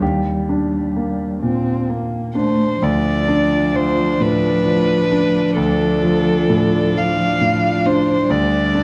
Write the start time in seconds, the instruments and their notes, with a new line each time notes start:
Already playing: cello G3
0.01 grand piano D#2 G4
0.49 grand piano D4
0.96 grand piano A#3
1.42 grand piano A#2, cello C4
1.90 grand piano A#3, cello A#3
2.35 cello A3, grand piano D4, violin C5
2.82 grand piano D2, cello F3, string section A3 F4, viola D4, violin D5
3.28 grand piano D4
3.73 grand piano F3, violin C5
4.20 grand piano A2, violin B4
4.65 grand piano F3
5.11 grand piano D4
5.56 grand piano D2, violin A4
6.02 grand piano F3
6.49 grand piano A2
6.96 grand piano F3, violin F5
7.41 grand piano A2
7.86 grand piano D4, violin C5
8.30 grand piano D2, cello G3, string section G3 G4, viola D4, violin D5
8.75 grand piano D4